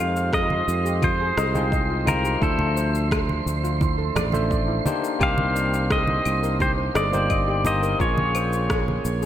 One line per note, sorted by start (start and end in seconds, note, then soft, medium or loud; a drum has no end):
0.00 0.61 F2 loud
0.00 1.50 G#3 medium
0.00 1.50 D#4 medium
0.00 1.51 F4 medium
0.00 1.51 G4 medium
0.00 0.14 C5 medium
0.00 1.52 C5 loud
0.00 0.34 F5 loud
0.00 9.26 C6 medium
0.16 cabasa soft
0.33 1.05 D#5 loud
0.33 kick loud
0.33 cross-stick medium
0.33 cabasa soft
0.50 high conga medium
0.68 1.30 F2 medium
0.68 cabasa medium
0.85 1.01 G4 medium
0.85 cabasa soft
1.02 1.12 F4 medium
1.02 2.11 C5 medium
1.02 kick loud
1.02 high conga medium
1.02 cabasa soft
1.02 claves medium
1.20 1.37 G#4 medium
1.37 2.35 C2 loud
1.37 1.53 D#5 loud
1.37 cross-stick medium
1.37 cabasa medium
1.54 2.03 G#3 medium
1.54 2.03 D#4 medium
1.54 2.03 F4 medium
1.54 1.72 G#4 medium
1.54 2.03 C5 medium
1.54 2.03 G5 medium
1.54 high conga medium
1.54 cabasa soft
1.72 1.88 D#5 medium
1.72 kick loud
1.72 cabasa soft
1.90 2.05 F4 medium
2.06 2.37 G#3 medium
2.06 2.37 D#4 medium
2.06 2.38 F4 medium
2.06 2.44 A#4 medium
2.06 2.38 C5 medium
2.06 2.38 G5 medium
2.06 high conga loud
2.06 cabasa medium
2.06 claves medium
2.24 2.40 G4 medium
2.24 cabasa soft
2.40 3.40 D2 loud
2.40 4.30 F3 medium
2.40 4.29 A3 medium
2.40 4.29 D4 medium
2.40 2.58 E4 loud
2.40 3.08 A4 medium
2.40 4.30 C5 loud
2.40 4.30 E5 medium
2.40 kick loud
2.40 cabasa soft
2.59 high conga medium
2.77 2.93 C5 medium
2.77 cabasa medium
2.95 cabasa soft
3.11 kick loud
3.11 cross-stick medium
3.11 cabasa soft
3.11 claves medium
3.29 high conga medium
3.46 4.09 D2 medium
3.46 cabasa medium
3.64 3.80 F4 medium
3.64 cabasa soft
3.81 3.91 E4 medium
3.81 kick loud
3.81 high conga medium
3.81 cabasa soft
3.98 4.15 A4 medium
4.16 4.79 A1 loud
4.16 4.32 D5 loud
4.16 cross-stick medium
4.16 low conga medium
4.16 cabasa medium
4.16 claves medium
4.32 4.82 F3 medium
4.32 4.81 A3 medium
4.32 4.82 D4 medium
4.32 4.50 A4 medium
4.32 4.82 C5 medium
4.32 4.82 E5 medium
4.32 high conga medium
4.32 cabasa soft
4.51 4.67 D5 medium
4.51 kick medium
4.51 cabasa soft
4.68 4.84 E4 medium
4.85 5.16 A#3 medium
4.85 5.17 D4 medium
4.85 5.17 D#4 medium
4.85 5.17 G4 medium
4.85 5.17 C5 medium
4.85 high conga loud
4.85 cabasa medium
5.03 5.19 A#4 medium
5.03 cabasa soft
5.19 6.19 C2 loud
5.19 7.08 A#3 medium
5.19 7.08 C4 medium
5.19 7.08 D#4 medium
5.19 5.37 G4 loud
5.19 7.09 G4 medium
5.19 7.09 C5 loud
5.19 kick loud
5.19 cabasa soft
5.19 claves medium
5.23 5.92 F5 loud
5.38 high conga medium
5.55 5.71 D5 medium
5.55 cabasa medium
5.74 cabasa soft
5.90 6.57 D#5 loud
5.90 kick loud
5.90 cross-stick medium
5.90 cabasa soft
6.07 high conga medium
6.26 6.89 C2 medium
6.26 cabasa medium
6.26 claves medium
6.43 6.59 A#4 medium
6.43 cabasa soft
6.60 6.70 G4 medium
6.60 6.71 C5 medium
6.60 kick loud
6.60 high conga medium
6.60 cabasa soft
6.78 6.94 C5 medium
6.95 7.93 G1 medium
6.95 7.66 D5 loud
6.95 7.11 D#5 loud
6.95 cross-stick medium
6.95 cabasa medium
7.12 7.61 A#3 medium
7.12 7.61 D#4 medium
7.12 7.61 G4 medium
7.12 7.29 C5 medium
7.12 7.62 C5 medium
7.12 high conga medium
7.12 cabasa soft
7.30 7.46 D#5 medium
7.30 kick loud
7.30 cabasa soft
7.30 claves medium
7.48 7.64 G4 medium
7.65 7.96 A#3 medium
7.65 7.96 D#4 medium
7.65 7.96 G4 medium
7.65 7.96 C5 loud
7.65 8.01 D#5 loud
7.65 high conga medium
7.65 cabasa medium
7.83 7.98 A#4 medium
7.83 cabasa soft
7.99 8.98 A#1 loud
7.99 9.26 A#3 medium
7.99 9.26 C#4 medium
7.99 8.16 F4 loud
7.99 9.26 F4 medium
7.99 9.26 G#4 medium
7.99 9.26 C#5 medium
7.99 9.26 C#5 loud
7.99 kick loud
7.99 cabasa soft
8.18 high conga medium
8.35 8.51 C5 medium
8.35 cabasa medium
8.35 claves medium
8.53 cabasa soft
8.70 kick loud
8.70 cross-stick medium
8.70 cabasa soft
8.88 high conga medium
9.05 9.26 A#1 medium
9.05 cabasa medium
9.22 9.26 G#4 medium
9.22 cabasa soft